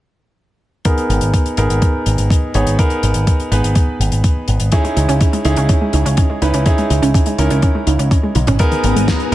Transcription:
0.85 grand piano B3 D#4 G#4 A#4, kick, closed hi-hat
0.98 closed hi-hat
1.09 picked electric bass G#1, closed hi-hat
1.21 picked electric bass G#1, closed hi-hat
1.34 kick, closed hi-hat
1.46 closed hi-hat
1.57 picked electric bass G#1, grand piano B3 D#4 G#4 A#4, closed hi-hat
1.70 picked electric bass G#1, closed hi-hat
1.82 kick, closed hi-hat
2.06 picked electric bass G#1, closed hi-hat
2.18 picked electric bass G#1, closed hi-hat
2.30 kick, closed hi-hat
2.54 picked electric bass G#1, grand piano B3 D#4 G#4 C#5, closed hi-hat
2.67 picked electric bass G#1, closed hi-hat
2.79 grand piano B3 D#4 G#4 A#4, kick, closed hi-hat
2.90 closed hi-hat
3.03 picked electric bass G#1, closed hi-hat
3.14 picked electric bass G#1, closed hi-hat
3.27 kick, closed hi-hat
3.40 closed hi-hat
3.51 picked electric bass G#1, grand piano B3 D#4 G#4 B4, closed hi-hat
3.64 picked electric bass G#1, closed hi-hat
3.75 kick, closed hi-hat
4.00 picked electric bass G#1, closed hi-hat
4.12 picked electric bass G#1, closed hi-hat
4.24 kick, closed hi-hat
4.48 picked electric bass G#1, closed hi-hat
4.60 picked electric bass G#1, closed hi-hat
4.72 synth arpeggio sound C#4, grand piano C#4 D#4 E4 G#4, kick, closed hi-hat
4.84 synth arpeggio sound G#3, closed hi-hat
4.97 picked electric bass C#2, synth arpeggio sound D#4, closed hi-hat
5.09 picked electric bass C#2, synth arpeggio sound C#4, closed hi-hat
5.21 synth arpeggio sound C#4, kick, closed hi-hat
5.33 synth arpeggio sound G#3, closed hi-hat
5.45 picked electric bass C#2, grand piano C#4 D#4 E4 G#4, synth arpeggio sound D#4, closed hi-hat
5.56 picked electric bass C#2, synth arpeggio sound C#4, closed hi-hat
5.69 synth arpeggio sound C#4, kick, closed hi-hat
5.81 synth arpeggio sound G#3
5.93 picked electric bass C#2, synth arpeggio sound D#4, closed hi-hat
6.05 picked electric bass C#2, synth arpeggio sound C#4, closed hi-hat
6.17 synth arpeggio sound C#4, kick, closed hi-hat
6.30 synth arpeggio sound G#3
6.42 picked electric bass C#2, grand piano C#4 D#4 E4 B4, synth arpeggio sound D#4, closed hi-hat
6.54 picked electric bass C#2, synth arpeggio sound C#4, closed hi-hat
6.66 synth arpeggio sound C#4, grand piano C#4 D#4 E4 G#4, kick, closed hi-hat
6.78 synth arpeggio sound G#3, closed hi-hat
6.90 picked electric bass C#2, synth arpeggio sound D#4, closed hi-hat
7.02 picked electric bass C#2, synth arpeggio sound C#4, closed hi-hat
7.14 synth arpeggio sound C#4, kick, closed hi-hat
7.26 synth arpeggio sound G#3, closed hi-hat
7.38 picked electric bass C#2, grand piano C#4 D#4 E4 A#4, synth arpeggio sound D#4, closed hi-hat
7.50 picked electric bass C#2, synth arpeggio sound C#4, closed hi-hat
7.62 synth arpeggio sound C#4, kick, closed hi-hat
7.75 synth arpeggio sound G#3
7.87 picked electric bass C#2, synth arpeggio sound D#4, closed hi-hat
7.99 picked electric bass C#2, synth arpeggio sound C#4, closed hi-hat
8.11 synth arpeggio sound C#4, kick, closed hi-hat
8.23 synth arpeggio sound G#3
8.35 picked electric bass B1, synth arpeggio sound D#4, closed hi-hat, high tom
8.47 picked electric bass G#1, synth arpeggio sound C#4, closed hi-hat, mid tom
8.59 synth arpeggio sound G#3, grand piano B3 D#4 G#4 A#4, string machine B3 G#5 A#5 D#6, kick, closed hi-hat
8.72 synth arpeggio sound D#3, closed hi-hat
8.84 picked electric bass G#1, synth arpeggio sound A#3, closed hi-hat
8.96 picked electric bass G#1, synth arpeggio sound G#3, closed hi-hat
9.08 synth arpeggio sound G#3, kick, snare, closed hi-hat
9.20 synth arpeggio sound D#3, closed hi-hat

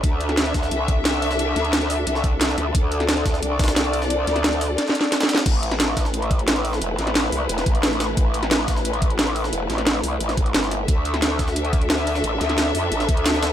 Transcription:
Already playing: string section D4
0.03 wobble bass D2, string section A4 E5, kick, closed hi-hat
0.20 closed hi-hat
0.29 snare, closed hi-hat
0.37 snare, closed hi-hat
0.46 closed hi-hat
0.54 wobble bass D2, kick, snare, closed hi-hat
0.63 snare
0.71 wobble bass C2, closed hi-hat
0.88 kick, closed hi-hat
1.05 snare, closed hi-hat
1.14 closed hi-hat
1.22 closed hi-hat, open hi-hat
1.31 snare
1.39 closed hi-hat
1.56 wobble bass D2, snare, closed hi-hat
1.65 closed hi-hat
1.73 snare, closed hi-hat
1.81 closed hi-hat
1.90 closed hi-hat, open hi-hat
2.07 wobble bass C2, closed hi-hat
2.15 snare
2.24 kick, closed hi-hat
2.41 snare, closed hi-hat
2.49 snare
2.58 wobble bass D2, snare, closed hi-hat
2.75 wobble bass D2, string section D5, kick, closed hi-hat
2.92 closed hi-hat
3.00 snare, closed hi-hat
3.09 snare, closed hi-hat
3.17 closed hi-hat
3.26 wobble bass D2, kick, snare, closed hi-hat
3.34 snare
3.42 wobble bass C2, closed hi-hat
3.59 kick, snare, closed hi-hat
3.64 snare, closed hi-hat
3.68 snare, closed hi-hat
3.76 snare, closed hi-hat
3.85 closed hi-hat
3.93 closed hi-hat, open hi-hat
4.02 snare
4.10 closed hi-hat
4.27 wobble bass D2, snare, closed hi-hat
4.36 snare, closed hi-hat
4.44 snare, closed hi-hat
4.53 closed hi-hat
4.61 snare, closed hi-hat, open hi-hat
4.78 snare, closed hi-hat
4.87 snare
4.89 snare
4.95 closed hi-hat
5.01 snare, closed hi-hat
5.12 snare, closed hi-hat
5.21 snare, closed hi-hat
5.23 snare
5.29 snare, closed hi-hat
5.35 snare
5.37 snare, closed hi-hat
5.46 wobble bass A1, string section A3 E4 B4, kick, closed hi-hat, crash
5.63 closed hi-hat
5.71 snare, closed hi-hat
5.80 snare, closed hi-hat
5.97 kick, snare, closed hi-hat
6.05 snare
6.14 closed hi-hat
6.22 closed hi-hat
6.31 kick, closed hi-hat
6.39 closed hi-hat
6.48 snare, closed hi-hat
6.56 closed hi-hat
6.65 closed hi-hat, open hi-hat
6.73 snare
6.82 wobble bass E1, closed hi-hat
6.98 wobble bass A1, snare, closed hi-hat
7.07 snare, closed hi-hat
7.15 snare, closed hi-hat
7.32 wobble bass C2, closed hi-hat, open hi-hat
7.49 wobble bass E1, closed hi-hat
7.58 snare, closed hi-hat
7.66 wobble bass A1, kick, closed hi-hat
7.75 closed hi-hat
7.83 snare, closed hi-hat
7.92 snare
8.00 snare, closed hi-hat
8.17 wobble bass A1, kick, closed hi-hat
8.34 closed hi-hat
8.43 snare, closed hi-hat
8.51 snare, closed hi-hat
8.68 kick, snare, closed hi-hat
8.77 snare
8.85 closed hi-hat
8.93 closed hi-hat
9.02 kick, closed hi-hat
9.10 closed hi-hat
9.19 snare, closed hi-hat
9.27 closed hi-hat
9.36 closed hi-hat, open hi-hat
9.44 snare
9.53 wobble bass E1, closed hi-hat
9.70 wobble bass A1, snare, closed hi-hat
9.78 snare, closed hi-hat
9.87 snare, closed hi-hat
10.03 wobble bass C2, closed hi-hat, open hi-hat
10.20 wobble bass A1, closed hi-hat
10.29 snare, closed hi-hat
10.37 kick, closed hi-hat
10.46 closed hi-hat
10.54 wobble bass G1, snare, closed hi-hat
10.63 snare
10.71 snare, closed hi-hat
10.88 wobble bass D2, string section D4 A4 E5, kick, closed hi-hat
11.05 closed hi-hat
11.14 snare, closed hi-hat
11.22 snare, closed hi-hat
11.39 kick, snare, closed hi-hat
11.48 snare
11.56 closed hi-hat
11.65 closed hi-hat
11.73 kick, closed hi-hat
11.81 closed hi-hat
11.90 snare, closed hi-hat
11.98 closed hi-hat
12.07 closed hi-hat, open hi-hat
12.15 snare
12.24 wobble bass A1, closed hi-hat
12.41 wobble bass D2, snare, closed hi-hat
12.49 snare, closed hi-hat
12.58 snare, closed hi-hat
12.75 wobble bass F2, closed hi-hat, open hi-hat
12.92 wobble bass A1, closed hi-hat
13.00 snare, closed hi-hat
13.09 wobble bass D2, kick, closed hi-hat
13.17 closed hi-hat
13.26 snare, closed hi-hat
13.34 snare
13.43 snare, closed hi-hat

